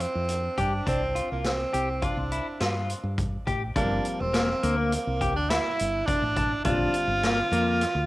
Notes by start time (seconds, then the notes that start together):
0.00 C4, closed hi-hat
0.15 F2
0.28 closed hi-hat
0.58 G2 D4 G4, kick, closed hi-hat
0.86 C2 C4 D4, kick, closed hi-hat
1.15 F4, closed hi-hat
1.32 C2 A#3
1.44 C4, snare, closed hi-hat
1.73 C2 G4, closed hi-hat
2.02 D4 F4, kick, closed hi-hat
2.17 C2
2.32 E4, closed hi-hat
2.60 G2 F4, snare, closed hi-hat
2.90 closed hi-hat
3.04 G2
3.18 kick, closed hi-hat
3.47 A1 G4, kick, closed hi-hat
3.75 G1 F3 G3 A#3 C4 D4 A#4, kick, closed hi-hat
4.05 closed hi-hat
4.20 E1 C4
4.33 A#3, snare, closed hi-hat
4.63 D2 A#3, closed hi-hat
4.77 A#3
4.92 closed hi-hat
5.07 C2
5.21 G4, kick, closed hi-hat
5.36 D2 D4
5.50 E4, snare, closed hi-hat
5.79 G1, closed hi-hat
6.06 D4, kick, closed hi-hat
6.22 A1
6.36 D4, kick, closed hi-hat
6.64 A#1 D3 G3 C4 D4 F4, kick, closed hi-hat
6.94 closed hi-hat
7.07 G1
7.23 A#3, snare, closed hi-hat
7.52 F2 A#3, closed hi-hat
7.81 snare, closed hi-hat
7.95 D2